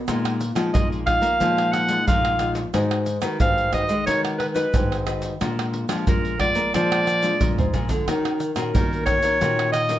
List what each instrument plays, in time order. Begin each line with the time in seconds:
0.08 nylon-string guitar A#2 G#3 D#4 F4, pandeiro, tamborim, shaker, surdo
0.25 pandeiro, tamborim, shaker
0.41 pandeiro, shaker
0.55 nylon-string guitar F3 G#3 D#4 F4, pandeiro, tamborim, shaker
0.74 nylon-string guitar A#2 F3, clarinet D#5, pandeiro, shaker, surdo
0.92 pandeiro, shaker
1.06 nylon-string guitar G#3 D#4 F4, clarinet F5, pandeiro, tamborim, surdo
1.22 nylon-string guitar A#3, pandeiro, shaker
1.40 nylon-string guitar A#2 F3 G#3 D#4 F4, pandeiro, shaker, surdo
1.58 pandeiro, tamborim, shaker
1.73 clarinet F#5, pandeiro, tamborim, shaker
1.88 nylon-string guitar G#3 D#4 F4, pandeiro, shaker
2.07 nylon-string guitar A#2 F3, clarinet F5, pandeiro, shaker, surdo
2.25 pandeiro, tamborim, shaker
2.39 nylon-string guitar G#3 D#4 F4, pandeiro, tamborim, shaker
2.55 pandeiro, shaker
2.73 nylon-string guitar G#2 G#3 D#4 F#4 B4, pandeiro, tamborim, shaker, surdo
2.91 pandeiro, tamborim, shaker
3.06 pandeiro, shaker
3.22 nylon-string guitar D#3 D#4 F#4 B4, pandeiro, tamborim, shaker
3.40 nylon-string guitar G#2 D#3, clarinet F5, pandeiro, shaker, surdo
3.58 pandeiro, shaker
3.72 nylon-string guitar D#4 F#4 B4, clarinet D#5, pandeiro, tamborim, shaker, surdo
3.89 nylon-string guitar G#3, pandeiro, shaker
4.06 nylon-string guitar D#3 G#3 D#4 F#4 B4, clarinet C#5, pandeiro, shaker, surdo
4.25 pandeiro, tamborim, shaker
4.39 clarinet B4, pandeiro, tamborim
4.54 nylon-string guitar D#4 F#4 B4, clarinet B4, pandeiro, shaker
4.73 nylon-string guitar G#2 D#3, pandeiro, shaker, surdo
4.92 pandeiro, tamborim, shaker
5.06 nylon-string guitar D#4 F#4 B4, pandeiro, tamborim, shaker
5.22 pandeiro, shaker
5.41 nylon-string guitar A#2 G#3 D4 F4, pandeiro, tamborim, shaker, surdo
5.59 pandeiro, tamborim, shaker
5.74 pandeiro
5.88 nylon-string guitar F3 G#3 D4 F4, pandeiro, tamborim, shaker
6.07 nylon-string guitar A#2 F3, clarinet A#4, pandeiro, shaker, surdo
6.25 pandeiro, shaker
6.40 nylon-string guitar G#3 D4 F4, clarinet D5, pandeiro, tamborim, surdo
6.55 nylon-string guitar A#3, pandeiro, shaker
6.74 nylon-string guitar A#2 F3 G#3 D4 F4, clarinet D5, pandeiro, tamborim, shaker, surdo
6.92 pandeiro, tamborim, shaker
7.07 pandeiro, tamborim, shaker
7.22 nylon-string guitar G#3 D4 F4, pandeiro, shaker
7.41 nylon-string guitar A#2 F3, pandeiro, shaker, surdo
7.58 nylon-string guitar G#2, surdo, pandeiro, shaker
7.73 nylon-string guitar A#2 G#3 D4 F4, pandeiro, shaker, surdo
7.89 nylon-string guitar D3, pandeiro, shaker, surdo
8.08 nylon-string guitar D#3 C#4 F#4 A#4, pandeiro, tamborim, shaker, surdo
8.25 pandeiro, tamborim, shaker
8.40 pandeiro, shaker
8.56 nylon-string guitar A#2 C#4 F#4 A#4, pandeiro, tamborim, shaker
8.74 nylon-string guitar A#2 D#3, clarinet A#4, pandeiro, shaker, surdo
8.93 pandeiro, shaker
9.06 nylon-string guitar C#4 F#4 A#4, clarinet C#5, pandeiro, tamborim, shaker, surdo
9.23 nylon-string guitar D#3, pandeiro, shaker
9.41 nylon-string guitar A#2 D#3 C#4 F#4 A#4, pandeiro, shaker, surdo
9.59 pandeiro, tamborim, shaker
9.72 clarinet D#5, pandeiro, tamborim, shaker
9.89 nylon-string guitar C#4 F#4 A#4, pandeiro, shaker